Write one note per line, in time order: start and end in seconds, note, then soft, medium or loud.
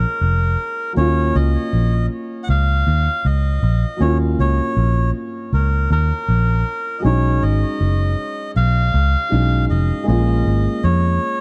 0.00 0.90 G#3 medium
0.00 0.91 A#3 medium
0.00 0.92 C#4 medium
0.00 0.93 F4 medium
0.00 0.93 A#4 medium
0.21 0.55 F1 medium
0.93 3.94 F#3 medium
0.93 3.95 A#3 medium
0.93 3.96 C#4 medium
0.97 1.31 D#2 medium
0.97 3.97 F4 medium
0.97 1.35 C#5 loud
1.35 1.56 C#2 medium
1.35 2.06 D#5 medium
1.73 2.07 A#1 medium
2.44 2.48 F#5 medium
2.49 2.83 C#2 medium
2.49 3.27 F5 medium
2.87 3.07 D#2 medium
3.25 3.59 C#2 medium
3.25 4.03 D#5 medium
3.63 3.83 A#1 medium
3.97 6.98 F#3 medium
3.97 6.98 A#3 medium
3.97 6.99 C#4 medium
4.01 4.35 D#2 medium
4.01 7.00 F4 medium
4.01 4.18 C#5 medium
4.39 4.59 C#2 medium
4.39 5.11 C#5 medium
4.77 5.11 A#1 medium
5.53 5.87 C#2 medium
5.53 5.90 A#4 medium
5.91 6.11 D#2 medium
5.91 7.02 A#4 medium
6.28 6.63 A#1 medium
6.99 9.25 F#3 medium
6.99 9.26 G#3 medium
6.99 7.04 D#5 medium
7.04 7.39 B1 medium
7.04 9.27 C#4 medium
7.04 9.28 D#4 medium
7.04 7.43 C#5 medium
7.42 7.63 G#1 medium
7.42 8.51 D#5 loud
7.80 8.14 F#1 medium
8.56 8.90 B1 medium
8.56 9.65 F5 loud
8.94 9.15 C#2 loud
9.29 9.66 B1 medium
9.29 10.06 F#3 soft
9.29 10.02 G#3 soft
9.29 10.06 C#4 soft
9.29 10.07 D#4 medium
9.70 9.91 F1 medium
9.70 10.06 D#5 medium
10.03 11.41 G#3 medium
10.03 11.41 A#3 medium
10.03 11.41 C#4 medium
10.08 10.42 A#1 loud
10.08 11.41 F4 medium
10.08 10.85 D#5 medium
10.46 10.66 G#1 medium
10.84 11.18 F2 medium
10.84 11.41 C#5 medium